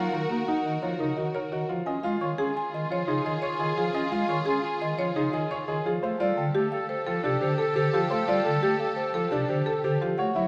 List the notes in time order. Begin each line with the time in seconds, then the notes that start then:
Already playing: F4 F#4 A#4 F5
0.12 D#3 D#4 A#4 A#5
0.29 A#3 D#4 F#4 A#4
0.47 D#4 F#5
0.65 D#3 D#4 D#5
0.82 F3 D#4 F4 C#5
0.99 C#3 D#4 A#4
1.17 D#3 D#4 F#4 D#5
1.34 D#4 A#4 C#5
1.51 D#3 D#4 F#4 D#5
1.69 F3 F4 A#4
1.86 C#4 F4 G#4 D#5 G#5
2.03 G#3 F4 F5
2.21 D#3 F4 C#5 C#6
2.38 C#4 F4 G#4
2.55 F4 G#5
2.72 D#3 F4 D#5
2.90 F3 F4 C#5
3.07 C#3 D#4 F4 G#4
3.24 D#3 F4 G#4 D#5
3.42 F4 C#5
3.59 D#3 F4 G#4 D#5
3.77 F3 F4 G#4
3.94 C#4 F4 D#5 G#5
4.11 G#3 F4 F5
4.29 D#3 F4 C#5 C#6
4.46 C#4 F4 G#4
4.64 F4 G#5
4.80 D#3 F4 D#5
4.98 F3 F4 C#5
5.15 C#3 D#4 F4 G#4
5.32 D#3 F4 G#4 D#5
5.51 F4 C#5
5.68 D#3 F4 G#4 D#5
5.85 F3 F4 G#4
6.02 A3 G4 A4 C5 F5
6.19 G3 F4 A4 D5
6.37 D3 A4 G5
6.55 A3 G4 A4
6.72 A4 F5
6.89 A4 C5
7.07 F3 F4 A4
7.23 C3 D4 G4 A4
7.41 D3 G4 A4 C5
7.58 A4
7.75 D3 G4 A4 C5
7.93 F3 F4 G4 A4
8.10 A3 A4 C5 F5
8.28 G3 F4 A4 D5
8.45 D3 A4 G5
8.62 A3 G4 A4
8.80 A4 F5
8.96 A4 C5
9.14 F3 F4 A4
9.31 C3 D4 G4 A4
9.49 D3 G4 A4 C5
9.66 A4
9.84 D3 G4 A4 C5
10.01 F3 F4 G4
10.18 A3 F#4 C#5 F#5
10.35 F#3 E4 F#4 E5